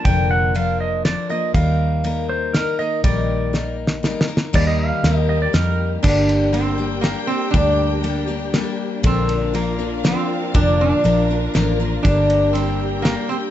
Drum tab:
CC |------------------|------------------|------------------|x-----------------|
RD |x-----x-----x-----|x-----x-----x-----|x-----------------|------------------|
HH |------------------|------------------|------------------|------x-----x-----|
SD |------------o-----|------------o-----|------o---o-o-o-o-|------o-----o-----|
BD |o-----------------|o-----------------|o-----------------|o-----------------|

CC |x-----------------|------------------|------------------|------------------|
RD |---x--x-----x-----|x-----x-----x-----|x--x--x-----x-----|x-----x-----x-----|
HH |------------------|------------------|------------------|------------------|
SD |------------o-----|------------o-----|------------o-----|------------o-----|
BD |o-----------------|o-----------------|o-----------------|o-----------------|

CC |------------------|
RD |x--x--x-----x-----|
HH |------------------|
SD |------------o-----|
BD |o-----------------|